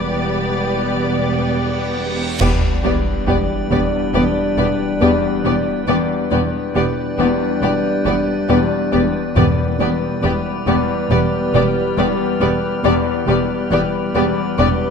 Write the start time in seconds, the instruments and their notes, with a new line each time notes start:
Already playing: double bass section E1, cello section E2, french horn section G3 B3, viola section B3, violin section G4 D5 B5 D6 A6, synth texture B4 D5 G5, reverse cymbal
2.40 double bass section E1, cello section E2, harp E2, french horn section G3 D4, viola section B3, violin section G4 D5, synth texture B4 D5 G5, concert bass drum, crash, sub drop
2.83 double bass section E1, cello section E2, harp E2, viola section B3, violin section G4 D5
3.27 double bass section E1, cello section E2, harp E3, viola section B3, violin section G4 D5
3.71 double bass section E1, cello section E2, harp E2, viola section B3, violin section G4 D5
4.14 double bass section E1, cello section E2, harp E2, viola section B3, violin section G4 D5
4.58 double bass section E1, cello section E2, harp E3, viola section B3, violin section G4 D5
5.01 double bass section E1, cello section E2, harp E2, viola section B3, violin section G4 D5
5.44 double bass section E1, cello section E2, harp E2, viola section B3, violin section G4 D5
5.88 double bass section E1, cello section E2, harp E2, french horn section G3 D4, viola section B3, violin section G4 D5, synth texture B4 D5 G5
6.31 double bass section E1, cello section E2, harp E2, viola section B3, violin section G4 D5
6.75 double bass section E1, cello section E2, harp E3, viola section B3, violin section G4 D5
7.18 double bass section E1, cello section E2, harp E2, viola section B3, violin section G4 D5
7.62 double bass section E1, cello section E2, harp E2, viola section B3, violin section G4 D5
8.05 double bass section E1, cello section E2, harp E3, viola section B3, violin section G4 D5
8.48 double bass section E1, harp E2, cello section E2, viola section B3, violin section G4 D5
8.92 double bass section E1, harp E2, cello section E2, viola section B3, violin section G4 D5
9.36 double bass section E1, timpani E2, cello section E2, harp E2, french horn section G3 B3, viola section B3, violin section G4 D5 B5, synth texture B4 D5 G5
9.80 double bass section E1, harp E2, cello section E2, viola section B3, violin section G4 D5
10.23 double bass section E1, cello section E2, harp E3, viola section B3, violin section G4 D5 F6
10.67 double bass section E1, harp E2, cello section E2, viola section B3, violin section G4 D5
11.10 double bass section E1, cello section E2, harp E2, viola section B3, violin section G4 D5
11.54 double bass section E1, cello section E2, harp E3, viola section B3, violin section G4 D5
11.97 double bass section E1, cello section E2, harp E2, viola section B3, violin section G4 D5
12.41 double bass section E1, cello section E2, harp E2, viola section B3, violin section G4 D5
12.84 double bass section E1, cello section E2, harp E2, french horn section G3 B3, viola section B3, violin section G4 D5, synth texture B4 D5 G5
13.27 double bass section E1, cello section E2, harp E2, viola section B3, violin section G4 D5
13.71 double bass section E1, cello section E2, harp E3, viola section B3, violin section G4 D5
14.15 double bass section E1, cello section E2, harp E2, viola section B3, violin section G4 D5
14.58 double bass section E1, cello section E2, harp E2, viola section B3, violin section G4 D5